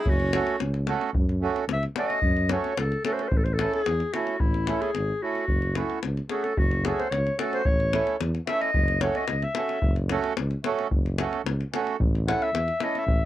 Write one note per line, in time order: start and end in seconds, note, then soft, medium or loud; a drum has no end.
0.00 0.11 G#4 medium
0.05 0.38 F#1 loud
0.05 0.60 C#4 medium
0.05 davul low medium
0.10 0.62 F#4 medium
0.20 davul high soft
0.33 0.56 A3 medium
0.33 0.56 C#4 medium
0.33 0.56 F#4 medium
0.33 0.56 A4 medium
0.33 davul high medium
0.47 davul high soft
0.60 0.93 C#2 medium
0.60 davul high soft
0.74 davul high soft
0.87 1.10 A3 medium
0.87 1.10 C#4 medium
0.87 1.10 F#4 medium
0.87 1.11 A4 medium
0.87 davul high medium
1.01 davul high soft
1.14 1.47 F#2 medium
1.14 davul low medium
1.29 davul high soft
1.41 1.64 A3 medium
1.41 1.64 C#4 medium
1.41 1.65 F#4 medium
1.41 1.65 A4 medium
1.56 davul high soft
1.68 1.84 C#2 medium
1.68 davul high medium
1.73 1.84 E5 medium
1.83 davul high soft
1.96 2.19 A3 soft
1.96 2.19 C#4 soft
1.96 2.19 F#4 medium
1.96 2.20 A4 medium
1.96 2.52 D#5 medium
1.96 davul high medium
2.10 davul high soft
2.22 2.56 F#2 loud
2.22 davul low medium
2.37 davul high soft
2.49 2.73 A3 medium
2.49 2.73 C#4 medium
2.49 2.73 F#4 medium
2.49 2.74 A4 medium
2.49 2.81 C#5 medium
2.49 davul high medium
2.64 davul high soft
2.77 2.94 C#2 medium
2.77 3.05 A4 medium
2.77 davul high medium
2.92 davul high soft
3.04 3.27 A3 medium
3.04 3.27 C#4 soft
3.04 3.28 F#4 medium
3.04 3.15 A4 medium
3.04 3.28 A4 medium
3.04 davul high medium
3.13 3.23 C5 medium
3.19 3.30 A4 medium
3.19 davul high soft
3.28 3.64 A1 loud
3.28 3.39 C5 medium
3.28 davul low medium
3.37 3.46 A4 medium
3.44 3.55 C5 medium
3.44 davul high soft
3.54 3.74 A4 medium
3.58 3.81 A3 medium
3.58 3.82 C#4 soft
3.58 3.82 E4 medium
3.58 3.82 A4 medium
3.58 davul high medium
3.74 4.15 G#4 loud
3.74 davul high soft
3.86 4.02 E2 medium
3.86 davul high medium
4.00 davul high soft
4.13 4.36 A3 medium
4.13 4.36 C#4 soft
4.13 4.37 E4 medium
4.13 4.42 F#4 medium
4.13 4.37 A4 medium
4.13 davul high medium
4.27 davul high soft
4.40 4.73 A1 medium
4.40 4.83 E4 medium
4.40 davul low medium
4.54 davul high soft
4.67 4.90 A3 medium
4.67 4.90 C#4 soft
4.67 4.91 E4 soft
4.67 4.91 A4 medium
4.67 davul high medium
4.82 5.24 G#4 medium
4.82 davul high soft
4.95 5.11 G#1 medium
4.95 davul high soft
5.22 5.45 A3 medium
5.22 5.45 C#4 medium
5.22 5.45 E4 soft
5.22 5.79 F#4 medium
5.22 5.46 A4 medium
5.35 davul high soft
5.48 5.81 F#1 medium
5.48 davul low medium
5.62 davul high soft
5.75 5.98 A3 medium
5.75 5.99 C#4 medium
5.75 6.04 E4 medium
5.75 5.99 F#4 soft
5.75 5.99 A4 medium
5.75 davul high medium
5.90 davul high soft
6.03 6.20 C#2 medium
6.03 davul high medium
6.17 davul high soft
6.29 6.53 A3 medium
6.29 6.53 C#4 soft
6.29 6.53 F#4 soft
6.29 6.45 G#4 medium
6.29 6.54 A4 medium
6.29 davul high soft
6.44 6.59 A4 medium
6.44 davul high soft
6.57 6.91 F#1 loud
6.57 6.86 F#4 medium
6.57 davul low medium
6.71 davul high soft
6.84 7.07 A3 medium
6.84 7.08 C#4 medium
6.84 7.08 F#4 medium
6.84 6.90 G#4 medium
6.84 7.08 A4 medium
6.84 davul high medium
6.89 7.01 G#4 medium
6.89 6.92 A4 medium
6.99 7.12 C5 medium
6.99 davul high soft
7.11 7.28 C#2 medium
7.11 7.38 C#5 medium
7.11 davul high medium
7.27 davul high soft
7.38 7.62 A3 medium
7.38 7.62 C#4 medium
7.38 7.62 F#4 medium
7.38 7.55 A4 medium
7.38 7.62 A4 medium
7.38 davul high medium
7.53 7.68 C5 loud
7.53 davul high soft
7.65 7.99 A1 medium
7.65 8.21 C#5 medium
7.65 davul low loud
7.80 davul high soft
7.92 8.16 A3 medium
7.92 8.16 C#4 medium
7.92 8.16 E4 medium
7.92 8.17 A4 medium
7.92 davul high medium
8.07 davul high soft
8.20 8.37 E2 medium
8.20 davul high medium
8.35 davul high soft
8.46 8.70 A3 medium
8.46 8.70 C#4 medium
8.46 8.70 E4 medium
8.46 8.71 A4 medium
8.46 8.63 E5 medium
8.46 davul high medium
8.61 9.03 D#5 medium
8.61 davul high soft
8.74 9.07 F#1 loud
8.74 davul low loud
8.88 davul high soft
9.01 9.24 A3 medium
9.01 9.25 C#4 medium
9.01 9.25 F#4 medium
9.01 9.25 A4 medium
9.01 9.18 C#5 medium
9.01 davul high medium
9.15 9.45 D#5 medium
9.15 davul high soft
9.28 9.45 C#2 medium
9.28 davul high medium
9.42 9.98 E5 medium
9.42 davul high soft
9.55 9.79 A3 medium
9.55 9.79 C#4 soft
9.55 9.79 F#4 medium
9.55 9.79 A4 medium
9.55 davul high medium
9.69 davul high soft
9.82 10.15 F#1 loud
9.82 davul low medium
9.96 davul high soft
10.09 10.33 A3 medium
10.09 10.33 C#4 medium
10.09 10.33 F#4 medium
10.09 10.34 A4 medium
10.09 davul high medium
10.24 davul high soft
10.37 10.54 C#2 medium
10.37 davul high medium
10.51 davul high soft
10.64 10.87 A3 medium
10.64 10.87 C#4 medium
10.64 10.88 F#4 medium
10.64 10.88 A4 medium
10.64 davul high medium
10.79 davul high soft
10.91 11.24 F#1 medium
10.91 davul low medium
11.06 davul high soft
11.18 11.41 A3 medium
11.18 11.41 C#4 medium
11.18 11.42 F#4 medium
11.18 11.42 A4 medium
11.18 davul high medium
11.33 davul high soft
11.46 11.62 C#2 medium
11.46 davul high medium
11.61 davul high soft
11.73 11.96 A3 medium
11.73 11.96 C#4 medium
11.73 11.96 F#4 medium
11.73 11.97 A4 medium
11.73 davul high medium
11.87 davul high soft
12.00 12.32 A1 loud
12.00 davul low medium
12.15 davul high soft
12.26 12.50 A3 medium
12.26 12.50 C#4 medium
12.26 12.50 E4 medium
12.26 12.50 A4 medium
12.26 12.44 F#5 medium
12.26 davul high medium
12.42 12.85 E5 medium
12.42 davul high soft
12.53 12.70 E2 medium
12.53 davul high medium
12.68 davul high soft
12.80 13.04 A3 medium
12.80 13.04 C#4 medium
12.80 13.04 E4 medium
12.80 13.05 A4 medium
12.80 12.99 D#5 medium
12.80 davul high medium
12.95 13.25 E5 medium
12.95 davul high soft
13.07 13.23 A1 medium
13.07 davul low loud